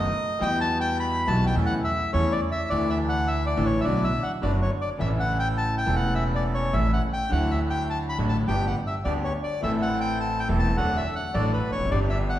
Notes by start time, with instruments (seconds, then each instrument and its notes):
Already playing: bandoneon D#5
0.39 grand piano E2 E3 G3 B3 F#4, upright bass E2, bandoneon G3 E4 F#4 G5
0.61 bandoneon A5
0.81 bandoneon G5
1.00 bandoneon B5
1.27 grand piano B1 B2 E3 G3 B3 F#4, upright bass B1, bandoneon G3 E4 F#4 A5
1.46 bandoneon G5
1.55 grand piano E2 C#3 E3 A3 E4, upright bass E2, bandoneon C#4 E4 A4
1.66 bandoneon F#5
1.84 bandoneon E5
2.12 grand piano E2 C#3 E3 A3 E4, upright bass E2, bandoneon C#4 E4 A4 C#5
2.32 bandoneon D5
2.52 bandoneon E5
2.69 grand piano D2 D3 E3 A3, upright bass D2, bandoneon D4 E4 A4 D5
2.73 grand piano E4
2.90 bandoneon E5
3.09 bandoneon F#5
3.28 bandoneon E5
3.46 bandoneon D5
3.56 grand piano A1 A2 D3 E3 A3 E4, upright bass A1, bandoneon D4 E4 A4
3.65 bandoneon C#5
3.81 grand piano D3, bandoneon D4 D5 E5
3.85 grand piano B1 B2 F#3 B3 F#4, upright bass B1, bandoneon F#4 B4
4.04 bandoneon E5
4.23 bandoneon F#5
4.41 grand piano F#1 F#2 D3 F#3 B3 F#4, upright bass F#1, bandoneon D4 F#4 B4 D5
4.62 bandoneon C#5
4.81 bandoneon D5
4.97 grand piano A1 A2 C#3 E3 A3, upright bass A1, bandoneon C#4 E4 A4 E5
5.01 grand piano E4
5.20 bandoneon F#5
5.39 bandoneon G5
5.58 bandoneon A5
5.78 bandoneon G5
5.85 upright bass E1, grand piano E1 E2 C#3 E3 A3 E4, bandoneon C#4 E4 A4
5.96 bandoneon F#5
6.15 bandoneon E5
6.35 bandoneon D5
6.55 bandoneon C#5
6.73 grand piano A1 A2 C#3 E3 A3 E4, upright bass A1, bandoneon C#4 E4 A4 E5
6.93 bandoneon F#5
7.13 bandoneon G5
7.29 grand piano D2 D3 F#3 A3 E4, upright bass D2, bandoneon D4 E4 F#4 F#5
7.51 bandoneon E5
7.70 bandoneon G5
7.90 bandoneon A5
8.09 bandoneon B5
8.18 upright bass A1, grand piano A1 A2 D3 F#3 A3 E4, bandoneon D4 E4 F#4
8.29 bandoneon A5
8.47 upright bass G1, grand piano G1 G2 D3 G3 B3 G4, bandoneon B3 D4 G4 G5
8.67 bandoneon F#5
8.87 bandoneon E5
9.05 grand piano D2 D3 G3 B3 G4, upright bass D2, bandoneon B3 D4 G4 D5
9.24 bandoneon C#5
9.43 bandoneon D5
9.61 grand piano A1 A2 E3 A3 C4, upright bass A1, bandoneon C4 E4 A4 E5
9.65 grand piano A4
9.82 bandoneon F#5
10.01 bandoneon G5
10.20 bandoneon A5
10.40 bandoneon G5
10.48 grand piano E1 E2 E3 A3 C4 A4, upright bass E1, bandoneon C4 E4 A4
10.59 bandoneon A5
10.77 grand piano D2 D3 F#3 A3 D4 A4, upright bass D2, bandoneon D4 F#4 A4 F#5
10.97 bandoneon E5
11.16 bandoneon F#5
11.34 grand piano A1 A2 F#3 A3 D4 A4, upright bass A1, bandoneon D4 F#4 A4 D5
11.53 bandoneon B4
11.71 upright bass E1, grand piano E2, bandoneon C#5
11.78 upright bass F1, grand piano F2
11.84 upright bass F#1, grand piano F#2
11.90 upright bass G1, grand piano G1 G2 D3 G3 B3, bandoneon D4 G4 B4 D5
11.94 grand piano G4
12.10 bandoneon E5
12.29 bandoneon F#5